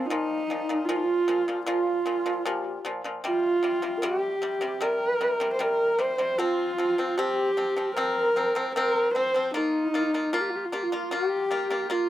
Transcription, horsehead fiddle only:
0.06 D#4
0.85 F4
1.66 F4
3.26 F4
4.04 G4
4.82 A#4
5.53 C5
5.61 A#4
5.99 C5
6.39 F4
7.18 G4
7.95 A#4
8.75 A#4
9.14 C5
9.54 D#4
10.33 F4
10.41 G4
10.50 F4
10.56 G4
10.65 F4
10.74 G4
10.83 F4
11.13 G4
11.91 F4

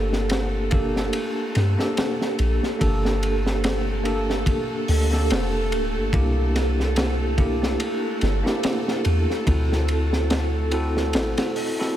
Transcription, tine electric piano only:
Already playing: A#3 D4 G4 A4
0.71 A#3 D4 G4 A4
1.78 A#3 D4 G4 A4
2.79 A#3 D4 G4 A4
4.03 A#3 D4 G4 A4
5.11 A#3 D4 G4 A4
6.13 A#3 D4 E4 G4
7.37 A#3 D4 E4 G4
8.43 A#3 D4 E4 G4
9.46 C4 E4 F#4 A4
10.72 C4 E4 F#4 A4
11.79 C4 E4 F#4 A4

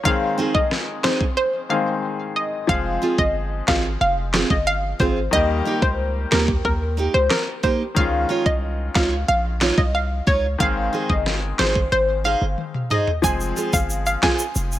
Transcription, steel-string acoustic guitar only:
0.38 C4 D#4 G#4
1.04 C4 D#4 G#4
3.02 C4 F4 G#4
3.68 C4 F4 G#4
4.34 C4 F4 G#4
4.99 C4 F4 G#4
5.65 A#3 D#4 G4
6.31 A#3 D#4 G4
6.97 A#3 D#4 G4
7.63 A#3 D#4 G4
8.29 D#4 F4 C#5
8.95 D#4 F4 C#5
9.61 D#4 F4 C#5
10.27 D#4 F4 C#5
10.93 D#4 G#4 C5
11.59 D#4 G#4 C5
12.24 D#4 G#4 C5
12.90 D#4 G#4 C5
13.56 F4 G#4 C5
14.22 F4 G#4 C5

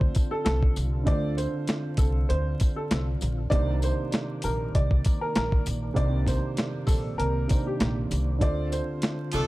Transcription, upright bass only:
0.46 C2
0.77 C2
1.07 D2
1.98 C2
2.30 D2
2.91 C2
3.22 A#1
3.52 C2
4.44 A#1
4.75 C2
5.36 A#1
5.66 A#1
5.97 C2
6.88 A#1
7.19 C2
7.81 A#1
8.11 C2
8.41 D2
9.34 C2

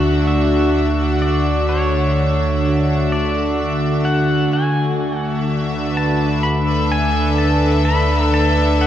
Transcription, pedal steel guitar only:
Already playing: F#5
0.27 E5
1.22 D5
1.69 C#5
3.12 D5
4.05 F#5
4.53 G#5
5.17 F#5
5.97 A5
6.43 B5
6.92 G#5
7.38 A5
7.85 B5
8.34 A5
8.81 F#5

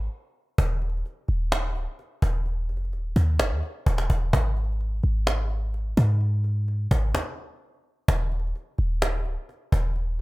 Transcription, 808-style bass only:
0.58 D#1
1.29 D#1
1.75 C#1
2.22 D#1
2.69 F1
2.93 D#1
3.16 D#2
3.40 F#1
3.51 D#2
3.86 D#1
4.10 D#1
4.33 G#1
5.04 G#1
5.97 G#2
6.91 G#1
8.08 D#1
8.79 D#1
9.26 C#1
9.72 D#1

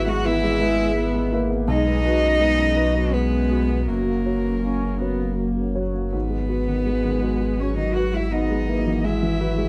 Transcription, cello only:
Already playing: E4
0.09 F#4
0.25 E4
1.68 D#4
3.14 B3
3.88 A#3
6.14 B3
7.60 C#4
7.78 D#4
7.94 F#4
8.14 E4
8.32 D#4
9.04 E4

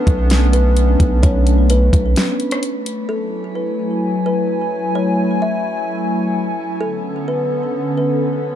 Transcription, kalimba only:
Already playing: B4
0.53 B4
1.23 C#5
1.70 B4
3.09 A4
3.55 B4
4.26 B4
4.95 C#5
5.42 E5
6.81 A4
7.28 B4
7.98 B4

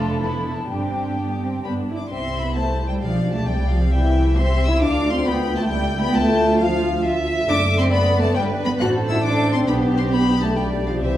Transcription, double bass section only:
Already playing: F1
0.70 G1
1.64 G1
2.11 C2
3.03 B1
3.47 C2
4.82 D2
5.71 C#2
6.16 D2
7.48 F#1
8.36 G1
8.80 A1
9.68 B1
11.02 C2

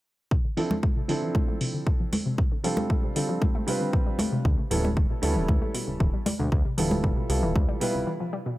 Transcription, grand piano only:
0.57 F3 C4 D4 E4 A4
1.08 F3 C4 D4 E4 A4
2.64 G3 C4 D4 F4 A4
3.16 G3 C4 D4 F4 A4
3.67 G3 C4 D4 F4 B4
4.71 G3 B3 C#4 E4 A4
5.22 G3 B3 C#4 E4 A4
6.78 G3 B3 E4 F4 A4
7.29 G3 B3 E4 F4 A4
7.80 G3 B3 E4 F4 B4

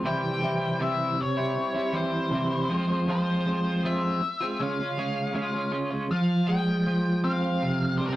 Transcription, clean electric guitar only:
0.04 C3 E3 G3 C4 E4
0.41 E3 G3 C4 E4
0.79 C3 E3 G3 C4 E4
1.18 muted clean electric guitar stroke
1.37 G3 C4 E4
1.74 G3 C4 E4
1.93 E3 G3 C4 E4
2.31 C3 E3 G3 C4 E4
2.50 G3 C4 E4
2.69 F3 G#3 C4 F4
2.88 G#3 C4 F4
3.07 F3 G#3 C4 F4
3.46 F3 G#3 C4 F4
3.83 F3 G#3 C4 F4
4.22 muted clean electric guitar stroke
4.41 G#3 C4 F4
4.60 C#3 G#3 C#4 F4
4.79 G#3 C#4 F4
4.97 C#3 G#3 C#4 F4
5.33 C#3 G#3 C#4 F4
5.52 G#3 C#4 F4
5.71 C#3 G#3 C#4 F4
5.90 G#3 C#4 F4
6.10 F3
6.48 G#3
6.87 F3
7.24 C4
7.62 C3
8.00 G3

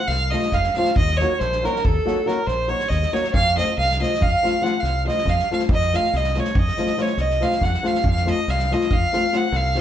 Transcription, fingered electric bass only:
0.08 C2
0.54 F1
0.97 D#2
1.41 A#1
1.85 D#2
2.47 A#1
2.90 D#2
3.34 F2
3.78 C2
4.21 F2
4.83 C2
5.25 F2
5.69 F2
6.13 C2
6.56 F2
7.17 C2
7.61 F2
8.05 F2
8.48 C2
8.92 F2
9.52 C2

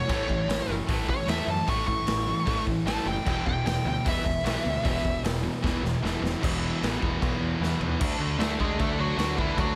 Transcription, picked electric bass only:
0.09 A1
0.29 A1
0.48 A1
0.68 F#1
0.89 A1
1.08 A1
1.27 E2
1.47 F#2
1.68 A1
1.88 A1
2.07 A1
2.47 A1
2.67 A1
2.86 A1
3.06 F#1
3.26 E1
3.47 E1
3.65 E1
3.85 D2
4.06 E1
4.25 E1
4.44 B1
4.65 D2
4.85 E1
5.04 E1
5.24 E1
5.64 E1
5.83 E1
6.03 E1
6.22 E1
6.43 E1
6.83 A1
7.02 E1
7.22 B1
7.40 E2
7.60 E2
7.80 E2
8.01 D2
8.18 D2
8.38 D2
8.60 D2
8.80 D2
9.17 D2
9.57 D2

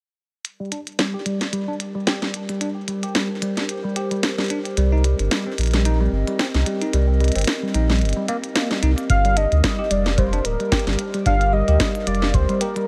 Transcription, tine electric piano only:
0.60 G3
0.72 D4
0.99 G3
1.14 G4
1.26 G3
1.53 G3
1.68 D4
1.95 G3
2.07 G4
2.22 G3
2.49 G3
2.61 D4
2.88 G3
3.03 G4
3.15 G3
3.42 G3
3.57 D4
3.84 G3
3.96 G4
4.11 G3
4.38 G3
4.50 D4
4.77 G3
4.92 D#4
5.04 G3
5.31 G3
5.47 C4
5.74 G3
5.85 D#4
6.01 G3
6.28 G3
6.39 C4
6.66 G3
6.82 D#4
6.93 G3
7.20 G3
7.36 C4
7.63 G3
7.74 D#4
7.90 G3
8.17 G3
8.29 A#3
8.56 A#3
8.71 G3
8.83 D#4
9.25 G3
9.37 D4
9.64 G3
9.79 G4
9.91 G3
10.18 G3
10.33 D4
10.60 G3
10.72 G4
10.87 G3
11.14 G3
11.26 D4
11.53 G3
11.68 G4
11.80 G3
12.07 G3
12.22 D4
12.49 G3
12.61 G4
12.76 G3

